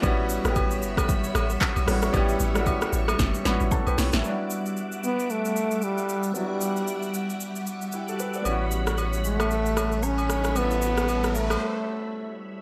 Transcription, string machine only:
0.03 4.20 G3 medium
0.03 4.20 C#5 medium
0.03 4.20 E5 medium
0.03 2.12 B5 medium
2.14 4.22 C#6 medium
4.24 12.62 G3 medium
4.24 8.41 E5 medium
4.24 10.52 F#5 medium
4.24 8.41 D6 medium
8.45 12.62 C#5 medium
8.45 12.62 B5 medium
10.56 12.62 E5 medium

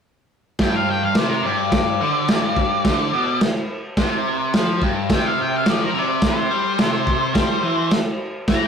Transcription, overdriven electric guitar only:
0.60 1.15 G2 loud
1.17 1.44 C3 loud
1.46 2.00 G2 loud
2.01 2.28 D3 loud
2.29 2.85 G2 medium
2.85 3.12 D3 loud
3.13 3.41 B2 loud
3.98 4.53 C3 loud
4.55 4.82 F3 medium
4.83 5.10 G2 loud
5.12 5.66 C3 loud
5.67 5.94 F3 loud
5.94 6.50 C3 loud
6.51 6.78 G3 loud
6.78 7.34 C3 loud
7.34 7.62 G3 loud
7.64 7.91 E3 loud
8.49 8.68 E3 loud

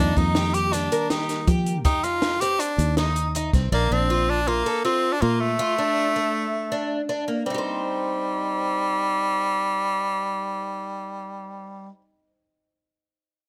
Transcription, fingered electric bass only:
0.00 0.16 F2 medium
0.17 0.88 F2 medium
1.47 1.85 F3 medium
1.85 2.56 F2 loud
2.78 3.49 D#2 medium
3.53 3.71 C2 medium
3.72 3.90 A#1 loud
3.91 4.62 A#1 medium
5.22 5.57 A#2 medium

